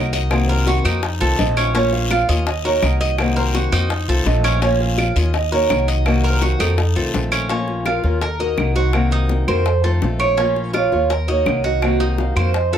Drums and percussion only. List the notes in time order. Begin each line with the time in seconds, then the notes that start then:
0.13 high bongo, short guiro
0.31 high bongo, long guiro, claves
0.49 high bongo
0.67 high bongo, short guiro
0.85 high bongo, short guiro, claves
1.03 high bongo, long guiro
1.39 high bongo, low bongo, short guiro
1.57 high bongo, short guiro, claves
1.75 high bongo, long guiro
1.93 high bongo
2.11 high bongo, short guiro, claves
2.29 high bongo, short guiro
2.47 high bongo, long guiro
2.83 high bongo, low bongo, short guiro, claves
3.01 high bongo, short guiro
3.18 high bongo, long guiro, claves
3.36 high bongo
3.55 high bongo, short guiro
3.72 high bongo, short guiro, claves
3.90 high bongo, long guiro
4.26 high bongo, low bongo, short guiro
4.44 high bongo, short guiro, claves
4.62 high bongo, long guiro
4.80 high bongo
4.98 high bongo, short guiro, claves
5.16 high bongo, short guiro
5.34 high bongo, long guiro
5.70 high bongo, low bongo, short guiro, claves
5.88 high bongo, short guiro
6.06 high bongo, long guiro, claves
6.24 high bongo
6.42 high bongo, short guiro
6.60 high bongo, short guiro, claves
6.78 high bongo, long guiro
7.14 high bongo, low bongo, short guiro
7.32 high bongo, short guiro, claves
7.49 high bongo
7.68 high bongo
7.86 high bongo, claves
8.04 high bongo
8.21 high bongo
8.58 high bongo, low bongo, claves
8.75 high bongo
8.93 high bongo, claves
9.11 high bongo
9.29 high bongo
9.48 high bongo, claves
9.66 high bongo
10.02 high bongo, low bongo
10.20 high bongo, claves
10.38 high bongo
10.56 high bongo
10.74 high bongo, claves
10.92 high bongo
11.10 high bongo
11.46 high bongo, low bongo, claves
11.64 high bongo
11.82 high bongo, claves
12.00 high bongo
12.18 high bongo
12.36 high bongo, claves
12.54 high bongo